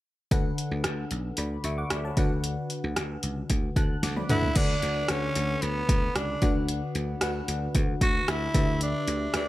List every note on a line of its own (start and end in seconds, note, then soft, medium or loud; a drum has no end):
0.31 0.50 D2 medium
0.31 1.07 D3 medium
0.31 1.26 D4 medium
0.31 1.26 A4 medium
0.31 1.26 B4 medium
0.31 1.27 F#5 medium
0.31 kick loud
0.31 closed hi-hat medium
0.58 closed hi-hat medium
0.71 0.81 D2 medium
0.84 1.04 D2 medium
0.84 cross-stick loud
0.84 closed hi-hat medium
1.11 1.30 B1 medium
1.11 closed hi-hat medium
1.37 1.57 D2 medium
1.37 1.63 D5 soft
1.37 1.63 B5 medium
1.37 closed hi-hat medium
1.64 1.83 D2 medium
1.64 1.77 E5 medium
1.64 1.77 C#6 medium
1.64 closed hi-hat medium
1.78 1.90 F#5 medium
1.78 1.90 D6 medium
1.90 2.10 D2 medium
1.90 2.04 D5 medium
1.90 2.04 B5 medium
1.90 cross-stick loud
1.90 closed hi-hat medium
2.05 2.30 C#5 soft
2.05 2.30 A5 medium
2.17 2.55 D2 medium
2.17 2.93 D3 medium
2.17 3.12 D4 medium
2.17 3.12 F#4 medium
2.17 3.12 B4 medium
2.17 3.13 F#5 medium
2.17 kick loud
2.17 closed hi-hat medium
2.44 closed hi-hat medium
2.70 closed hi-hat medium
2.84 2.93 D2 medium
2.96 3.16 D2 medium
2.96 cross-stick loud
2.96 closed hi-hat medium
3.23 3.42 C#2 medium
3.23 closed hi-hat medium
3.50 3.69 D2 medium
3.50 kick medium
3.50 closed hi-hat medium
3.76 3.95 D2 medium
3.76 4.02 A5 soft
3.76 4.02 F#6 medium
3.76 kick medium
3.76 closed hi-hat medium
4.03 4.22 D2 medium
4.03 4.16 F#5 soft
4.03 4.16 D6 medium
4.03 snare soft
4.03 closed hi-hat medium
4.16 4.42 D5 soft
4.16 4.42 B5 medium
4.16 high tom medium
4.29 4.49 D2 medium
4.29 4.53 D4 medium
4.29 4.58 E4 medium
4.29 4.53 A4 medium
4.29 4.53 B4 medium
4.29 4.53 F#5 medium
4.29 closed hi-hat medium
4.29 mid tom medium
4.42 floor tom medium
4.56 4.75 D2 medium
4.56 5.08 D3 medium
4.56 5.03 D4 medium
4.56 5.11 D4 medium
4.56 5.04 A4 medium
4.56 5.04 B4 medium
4.56 5.04 F#5 medium
4.56 kick loud
4.56 closed hi-hat medium
4.56 crash medium
4.82 5.02 D2 medium
4.82 closed hi-hat medium
5.08 5.29 D2 medium
5.08 6.04 D3 medium
5.08 5.64 C#4 medium
5.08 6.04 A4 medium
5.08 6.04 B4 medium
5.08 6.04 F#5 medium
5.08 cross-stick loud
5.08 closed hi-hat medium
5.35 5.55 D2 medium
5.35 closed hi-hat medium
5.62 5.82 D2 medium
5.62 6.17 B3 medium
5.62 closed hi-hat medium
5.89 6.08 D2 medium
5.89 kick medium
5.89 closed hi-hat medium
6.16 6.35 C#2 medium
6.16 6.56 D4 medium
6.16 cross-stick loud
6.16 closed hi-hat medium
6.42 6.80 D2 medium
6.42 7.18 D3 medium
6.42 7.13 D4 medium
6.42 7.13 F#4 medium
6.42 7.14 B4 medium
6.42 7.14 F#5 medium
6.42 kick loud
6.42 closed hi-hat medium
6.68 closed hi-hat medium
6.95 7.14 D2 medium
6.95 closed hi-hat medium
7.21 7.41 D2 medium
7.21 8.16 D4 medium
7.21 8.17 F#4 medium
7.21 8.17 B4 medium
7.21 8.17 F#5 medium
7.21 cross-stick loud
7.21 closed hi-hat medium
7.48 7.67 D2 medium
7.48 closed hi-hat medium
7.75 7.94 D2 medium
7.75 kick medium
7.75 closed hi-hat medium
8.01 8.20 D2 medium
8.01 8.31 F#4 medium
8.01 kick medium
8.01 closed hi-hat medium
8.28 8.47 D2 medium
8.28 8.82 E4 medium
8.28 cross-stick loud
8.28 closed hi-hat medium
8.54 8.93 D2 medium
8.54 9.30 D3 medium
8.54 9.25 D4 medium
8.54 9.26 G4 medium
8.54 9.26 B4 medium
8.54 9.26 E5 medium
8.54 kick loud
8.54 closed hi-hat medium
8.81 9.31 D4 medium
8.81 closed hi-hat medium
9.08 9.27 D2 medium
9.08 closed hi-hat medium
9.34 9.48 D2 medium
9.34 9.48 D4 medium
9.34 9.48 G4 medium
9.34 9.48 B4 medium
9.34 9.48 E5 medium
9.34 cross-stick loud
9.34 closed hi-hat medium